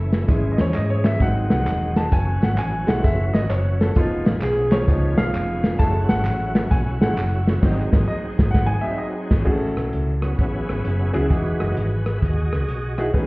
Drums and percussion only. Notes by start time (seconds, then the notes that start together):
0.12 snare, closed hi-hat, tambourine
0.28 kick, closed hi-hat, tambourine
0.58 snare, closed hi-hat, tambourine
0.74 clap, closed hi-hat, tambourine
1.04 snare, clap, closed hi-hat, tambourine
1.20 kick, closed hi-hat, tambourine
1.50 snare, closed hi-hat, tambourine
1.67 clap, closed hi-hat, tambourine
1.96 snare, closed hi-hat, tambourine
2.12 kick, closed hi-hat, tambourine
2.42 snare, closed hi-hat, tambourine
2.58 clap, closed hi-hat, tambourine
2.88 snare, clap, closed hi-hat, tambourine
3.04 kick, closed hi-hat, tambourine
3.34 snare, closed hi-hat, tambourine
3.51 clap, closed hi-hat, tambourine
3.81 snare, closed hi-hat, tambourine
3.95 kick, closed hi-hat, tambourine
4.26 snare, closed hi-hat, tambourine
4.41 clap, closed hi-hat, tambourine
4.72 snare, clap, closed hi-hat, tambourine
4.88 kick, closed hi-hat, tambourine
5.18 snare, closed hi-hat, tambourine
5.34 clap, closed hi-hat, tambourine
5.64 snare, closed hi-hat, tambourine
5.79 kick, closed hi-hat, tambourine
6.09 snare, closed hi-hat, tambourine
6.25 clap, closed hi-hat, tambourine
6.55 snare, clap, closed hi-hat, tambourine
6.71 kick, closed hi-hat, tambourine
7.02 snare, closed hi-hat, tambourine
7.17 clap, closed hi-hat, tambourine
7.47 snare, closed hi-hat, tambourine
7.63 kick, snare, crash
7.93 kick, snare
8.39 kick, snare
8.54 kick, snare
9.31 kick, snare, crash
9.47 kick, crash
9.77 cross-stick, closed hi-hat
9.93 closed hi-hat
10.22 cross-stick, closed hi-hat
10.39 kick, closed hi-hat
10.69 cross-stick, closed hi-hat
10.85 closed hi-hat
11.14 cross-stick, closed hi-hat
11.31 kick, closed hi-hat
11.60 cross-stick, closed hi-hat
11.77 closed hi-hat
12.06 cross-stick, closed hi-hat
12.22 kick, closed hi-hat
12.53 cross-stick, closed hi-hat
12.68 closed hi-hat
12.98 cross-stick, closed hi-hat
13.14 kick, closed hi-hat